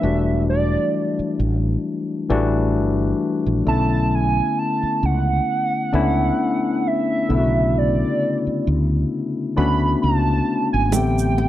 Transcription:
0.00 0.76 E1 medium
0.00 0.02 E3 medium
0.00 1.60 E3 medium
0.00 0.02 G3 medium
0.00 1.60 G3 medium
0.00 0.03 A3 medium
0.00 1.61 A3 medium
0.00 0.04 D4 medium
0.00 1.61 D4 medium
0.00 3.67 E4 medium
0.00 0.44 E5 medium
0.04 1.61 F#4 medium
0.49 1.35 D5 medium
1.19 muted fretless electric bass stroke soft
1.40 1.76 A1 medium
2.29 2.76 A1 medium
2.29 3.48 E3 medium
2.29 3.49 G3 medium
2.29 3.49 A3 medium
2.29 3.49 D4 medium
2.29 3.50 F#4 medium
2.76 3.12 G1 medium
3.46 3.62 A#1 medium
3.65 4.39 B1 medium
3.65 5.24 D3 medium
3.65 5.24 A3 medium
3.65 5.24 B3 soft
3.65 5.25 C#4 medium
3.65 5.25 E4 medium
3.65 4.16 A5 loud
4.15 4.60 G#5 loud
4.59 5.07 A5 medium
4.83 muted fretless electric bass stroke soft
5.03 5.39 C#2 medium
5.03 6.89 F#5 medium
5.93 6.30 C#2 medium
5.93 7.12 A3 medium
5.93 7.12 B3 medium
5.93 7.13 C#4 medium
5.93 7.12 D4 medium
5.93 7.13 E4 medium
6.87 7.80 E5 medium
7.29 8.03 B1 medium
7.29 8.88 C#3 medium
7.29 8.87 D3 medium
7.29 8.87 A3 soft
7.29 8.88 B3 soft
7.29 7.37 E4 soft
7.38 8.92 F#4 medium
7.78 8.67 D5 medium
8.47 muted fretless electric bass stroke soft
8.67 9.03 D2 medium
9.57 9.94 D2 medium
9.57 10.76 A3 medium
9.57 10.76 B3 medium
9.57 10.77 C#4 medium
9.57 10.76 D4 medium
9.57 10.77 F#4 medium
9.57 9.99 B5 loud
10.02 10.39 C#2 medium
10.02 10.69 A5 loud
10.73 10.94 G#1 medium
10.73 10.94 G#5 medium
10.92 11.49 A1 medium
10.92 11.49 D3 medium
10.92 11.10 A3 medium
10.92 11.49 A3 medium
10.92 11.49 B3 soft
10.92 11.49 C4 medium
10.92 11.49 G4 medium
10.92 11.49 G5 loud
10.92 shaker medium
11.18 shaker soft
11.38 muted nylon-string guitar stroke soft

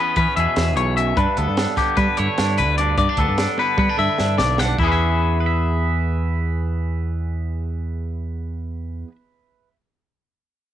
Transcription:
0.00 0.77 E2 medium
0.00 1.16 E3 medium
0.00 1.37 B3 soft
0.00 0.17 C#4 soft
0.00 0.16 B4 medium
0.16 0.26 E3 medium
0.16 1.16 C#4 medium
0.16 0.36 B4 medium
0.16 kick medium
0.16 closed hi-hat medium
0.36 0.46 E2 medium
0.36 1.16 B2 medium
0.36 1.16 G#4 soft
0.36 0.76 E5 medium
0.36 closed hi-hat soft
0.56 0.77 E2 medium
0.56 snare medium
0.56 closed hi-hat medium
0.77 1.12 B1 medium
0.77 0.97 E2 medium
0.77 0.96 C#5 medium
0.77 closed hi-hat soft
0.97 1.17 F#2 medium
0.97 1.17 E5 medium
0.97 closed hi-hat medium
1.17 1.26 G2 medium
1.17 2.78 G2 medium
1.17 1.58 D4 medium
1.17 1.38 B4 medium
1.17 kick medium
1.17 closed hi-hat medium
1.37 1.47 D2 medium
1.37 1.77 B3 medium
1.37 1.77 A4 medium
1.37 closed hi-hat medium
1.48 1.66 G2 medium
1.57 1.97 D4 medium
1.57 snare medium
1.57 closed hi-hat medium
1.77 2.16 D3 medium
1.77 2.99 B3 medium
1.77 1.98 G4 medium
1.77 kick medium
1.77 snare soft
1.77 closed hi-hat medium
1.97 2.06 G3 medium
1.97 2.37 D4 soft
1.97 2.17 B4 medium
1.97 kick medium
1.97 closed hi-hat medium
2.17 2.27 G2 medium
2.17 2.96 D3 medium
2.17 2.98 E4 soft
2.17 2.58 C#5 medium
2.17 closed hi-hat medium
2.38 2.61 G2 medium
2.38 2.78 D4 medium
2.38 snare medium
2.38 closed hi-hat medium
2.58 2.94 D2 medium
2.58 2.78 B4 medium
2.58 closed hi-hat medium
2.78 2.96 G2 medium
2.78 2.97 D4 soft
2.78 2.97 D5 medium
2.78 closed hi-hat medium
2.98 3.07 G2 medium
2.98 4.57 G2 medium
2.98 3.09 B3 medium
2.98 3.18 D5 medium
2.98 kick medium
2.98 closed hi-hat medium
3.09 3.38 D4 soft
3.17 3.27 D2 medium
3.17 3.58 B3 medium
3.17 3.58 A4 medium
3.17 kick medium
3.17 closed hi-hat medium
3.28 3.46 G2 medium
3.38 3.78 D4 soft
3.38 snare loud
3.38 closed hi-hat medium
3.58 3.96 D3 medium
3.58 3.77 B3 medium
3.58 3.78 B4 medium
3.58 high tom soft
3.77 3.87 G3 medium
3.77 3.89 B3 soft
3.77 3.98 B4 medium
3.77 kick medium
3.77 high tom soft
3.89 4.19 D4 soft
3.97 4.07 G2 medium
3.97 4.76 D3 medium
3.97 4.87 E4 soft
3.97 4.38 E5 medium
4.18 4.40 G2 medium
4.18 4.58 D4 medium
4.18 snare medium
4.38 4.74 B1 medium
4.38 4.59 D5 medium
4.38 snare medium
4.58 4.76 G2 medium
4.58 4.77 D4 soft
4.58 4.79 F#5 medium
4.58 snare medium
4.79 9.03 E2 medium
4.79 9.08 E2 medium
4.79 9.09 E3 medium
4.79 4.91 E4 medium
4.79 kick medium
4.83 9.11 B3 medium
4.83 5.40 C#4 medium
4.83 9.07 G#4 medium
4.88 5.46 G#4 soft
4.88 9.12 B4 medium
4.88 9.15 E5 medium
5.40 9.68 B4 medium
5.46 9.74 E5 medium

